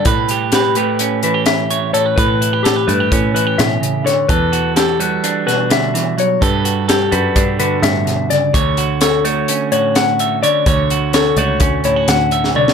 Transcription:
<<
  \new Staff \with { instrumentName = "Clean electric guitar" } { \time 9/8 \key a \mixolydian \tempo 4. = 85 b'4 g'8 b'4 b'8 e''4 cis''8 | b'4 g'8 b'4 b'8 e''4 cis''8 | b'4 g'8 b'4 b'8 e''4 cis''8 | b'4 g'8 b'4 b'8 e''4 d''8 |
cis''4 a'8 cis''4 cis''8 fis''4 d''8 | cis''4 a'8 cis''4 cis''8 fis''4 d''8 | }
  \new Staff \with { instrumentName = "Clean electric guitar" } { \time 9/8 \key a \mixolydian << { b'8 g'8 b'8 g'8 cis'8 e'16 g'8. cis''8 a'16 b'16 | b'8 e'16 g'16 a'16 b'16 e'16 g'16 cis'8 e'16 g'4.~ g'16 | a'8 fis'8 a'8 fis'8 d'8 fis'2 | a'8 fis'8 a'8 fis'8 d'8 fis'2 |
cis''8 fis'8 cis''8 fis'8 cis'8 fis'4 e''8 cis''8 | cis''8 fis'8 cis''8 fis'8 cis'8 e'16 fis'8. e''8 cis''8 | } \\ { <a, g>4. a4 e4. a,8 | a,4. a4 e8 b,8 cis8 d8 | e4. g4 b,8 d8 e8 fis8 | g,4. g4 d8 a,8 b,8 cis8 |
d4. a4 a,4. d8 | d4. a4 a,4. d8 | } >> }
  \new Staff \with { instrumentName = "Picked electric bass" } { \clef bass \time 9/8 \key a \mixolydian a,2 r2 r8 | a,4. g,8 a,4 a,4. | e,2 r2 r8 | g,4. fis,8 g,4 g,4. |
d,2 r2 r8 | d,4. cis,8 d,4 d,4. | }
  \new DrumStaff \with { instrumentName = "Drums" } \drummode { \time 9/8 <hh bd>8 hh8 <hh sn>8 hh8 hh8 hh8 <hh sn>8 hh8 hh8 | <hh bd>8 hh8 <hh sn>8 hh8 <hh bd>8 hh8 <hh sn>8 hh8 <hh sn>8 | <hh bd>8 hh8 <hh sn>8 hh8 hh8 <hh sn>8 <hh sn>8 <hh sn>8 hh8 | <hh bd>8 hh8 <hh sn>8 hh8 <hh bd>8 hh8 <hh sn>8 <hh sn>8 <hh sn>8 |
<hh bd>8 hh8 <hh sn>8 hh8 hh8 hh8 <hh sn>8 hh8 hh8 | <hh bd>8 hh8 <hh sn>8 hh8 <hh bd>8 hh8 <hh sn>8 hh16 sn16 toml16 sn16 | }
>>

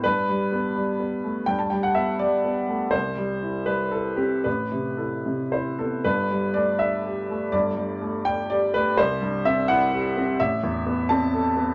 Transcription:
<<
  \new Staff \with { instrumentName = "Upright piano" } { \time 3/4 \key g \major \tempo 4 = 124 b'2. | g''16 a''16 g''16 fis''16 e''8 d''4. | c''4. b'8 a'8 g'8 | b'4 a'4 c''8 a'8 |
b'4 d''8 e''4. | d''4. g''8 d''8 b'8 | c''4 e''8 fis''4. | e''4. a''8 r4 | }
  \new Staff \with { instrumentName = "Upright piano" } { \time 3/4 \key g \major g,8 g8 b8 g8 b8 a8 | g,8 g8 b8 g8 b8 a8 | c,8 g8 e'8 g8 e'8 c'8 | a,,8 c8 e'8 c8 e'8 b8 |
<g,, g,>8 g8 a8 d'8 g'8 a8 | <g,, g,>8 g8 a8 d'8 g'8 a8 | c,8 g,8 c'8 e'8 g'8 c'8 | a,,8 e,8 b8 c'8 a'8 b8 | }
>>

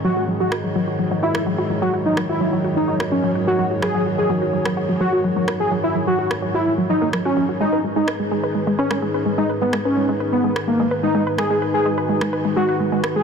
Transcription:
<<
  \new Staff \with { instrumentName = "Analog synth pad" } { \time 4/4 \key fis \mixolydian \tempo 4 = 127 << { <fis fis' gis' cis''>1~ | <fis fis' gis' cis''>1~ | <fis fis' gis' cis''>1~ | <fis fis' gis' cis''>1 |
<dis' b'>1~ | <dis' b'>1~ | <dis' b'>1 | } \\ { ais'1~ | ais'1~ | ais'1~ | ais'1 |
gis'1~ | gis'1 | fis'1 | } >> }
  \new Staff \with { instrumentName = "Analog synth lead" } { \time 4/4 \key fis \mixolydian fis'8 r16 fis'16 r4. e'8 r8. fis'16 | r16 dis'16 r16 e'8 r8 dis'8 r16 cis'8 r16 fis'8 r16 | gis'8 r16 gis'16 r4. fis'8 r8. gis'16 | r16 e'16 r16 fis'8 r8 e'8 r16 dis'8 r16 cis'8 r16 |
dis'8 r16 dis'16 r4. cis'8 r8. dis'16 | r16 b16 r16 cis'8 r8 b8 r16 ais8 r16 dis'8 r16 | gis'8 r16 gis'16 r4. fis'8 r8. gis'16 | }
  \new Staff \with { instrumentName = "Synth pluck" } { \clef bass \time 4/4 \key fis \mixolydian fis16 fis'16 fis16 fis16 fis'16 fis16 fis16 fis'16 fis16 fis16 fis'16 fis16 fis16 fis'16 fis16 fis16 | fis'16 fis16 fis16 fis'16 fis16 fis16 fis'16 fis16 fis16 fis'16 fis16 fis16 fis'16 fis16 fis16 fis'16 | fis16 fis16 fis'16 fis16 fis16 fis'16 fis16 fis16 fis'16 fis16 fis16 fis'16 fis16 fis16 fis'16 fis16 | fis16 fis'16 fis16 fis16 fis'16 fis16 fis16 fis'16 fis16 fis16 fis16 ais16 fis16 fis'16 fis16 fis'16 |
gis16 b'16 gis16 gis16 b'16 gis16 gis16 b'16 gis16 gis16 b'16 gis16 gis16 b'16 gis16 gis16 | b'16 gis16 gis16 b'16 gis16 gis16 b'16 gis16 gis16 b'16 gis16 gis16 b'16 gis16 gis16 b'16 | gis16 gis16 b'16 gis16 gis16 b'16 gis16 gis16 b'16 gis16 gis16 b'16 gis16 gis16 b'16 gis16 | }
  \new Staff \with { instrumentName = "Synth drone" } { \clef bass \time 4/4 \key fis \mixolydian <gis, dis>1~ | <gis, dis>1~ | <gis, dis>1~ | <gis, dis>1 |
<gis, dis>1~ | <gis, dis>1~ | <gis, dis>1 | }
  \new DrumStaff \with { instrumentName = "Drums" } \drummode { \time 4/4 r4 ss4 r8. ss16 r4 | r8 ss8 r4 r16 ss8. r4 | ss4 r8. ss16 r4 r8 ss8 | r4 r16 ss8. r4 ss4 |
r4 ss4 r8. ss16 r4 | r8 ss8 r4 r16 ss8. r4 | ss4 r8. ss16 r4 r8 ss8 | }
>>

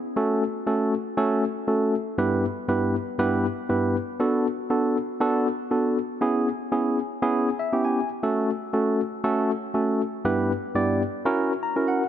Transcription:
\new Staff \with { instrumentName = "Tine electric piano" } { \time 4/4 \key fis \phrygian \tempo 4 = 119 << { r1 | r1 | r1 | r2. e''8 gis''8 |
r1 | r2. ais''8 fis''8 | } \\ { r16 <a cis' fis' a'>8 r8 <a cis' fis' a'>8 r8 <a cis' fis' a'>8 r8 <a cis' fis' a'>8 r16 | r16 <g, b e' g' b'>8 r8 <g, b e' g' b'>8 r8 <g, b e' g' b'>8 r8 <g, b e' g' b'>8 r16 | r16 <b d' fis' a'>8 r8 <b d' fis' a'>8 r8 <b d' fis' a'>8 r8 <b d' fis' a'>8 r16 | r16 <b cis' e' gis'>8 r8 <b cis' e' gis'>8 r8 <b cis' e' gis'>8 r8 <b cis' e' g'>8 r16 |
r16 <a cis' fis' a'>8 r8 <a cis' fis' a'>8 r8 <a cis' fis' a'>8 r8 <a cis' fis' a'>8 r16 | r16 <g, b e' g' b'>8 r8 <g, b e' g' d''>8 r8 <cis' e' fis' ais'>8 r8 <cis' e' fis' ais'>8 r16 | } >> }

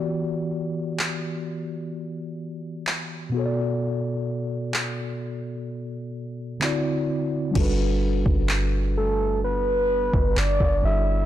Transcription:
<<
  \new Staff \with { instrumentName = "Soft synth lead" } { \time 4/4 \key g \major \tempo 4 = 64 r1 | r1 | r4. a'8 b'4 d''8 e''8 | }
  \new Staff \with { instrumentName = "Tine electric piano" } { \time 4/4 \key g \major <e b fis' g' d''>2.~ <e b fis' g' d''>8 <b, b fis' a' cis'' d''>8~ | <b, b fis' a' cis'' d''>2. <d c' e' fis' d''>4 | <g d' fis' a' b'>2.~ <g d' fis' a' b'>8 <g d' fis' a' d''>8 | }
  \new Staff \with { instrumentName = "808-style bass" } { \clef bass \time 4/4 \key g \major r1 | r1 | g,,8. g,,2 g,,16 g,,16 g,,16 g,,8 | }
  \new DrumStaff \with { instrumentName = "Drums" } \drummode { \time 4/4 r4 hc4 r4 hc4 | r4 hc4 r4 hc4 | <cymc bd>8. bd16 hc4 r8. bd16 hc16 bd8. | }
>>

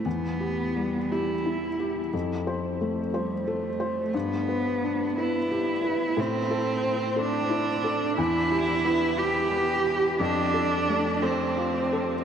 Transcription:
<<
  \new Staff \with { instrumentName = "Felt piano" } { \time 6/8 \key e \phrygian \tempo 4. = 59 e,8 g'8 g8 g'8 e'8 g'8 | f,8 c''8 a8 c''8 a'8 c''8 | g,8 b'8 d'8 b'8 g'8 b'8 | a,8 a'8 c'8 a'8 e'8 a'8 |
e,8 g'8 b8 g'8 b8 g'8 | f,8 a'8 a8 a'8 f'8 a'8 | }
  \new Staff \with { instrumentName = "Cello" } { \time 6/8 \key e \phrygian b4. e'4. | r4. g8 a4 | b4. e'4. | c'4. d'4. |
e'4. g'4. | d'4. c'4. | }
>>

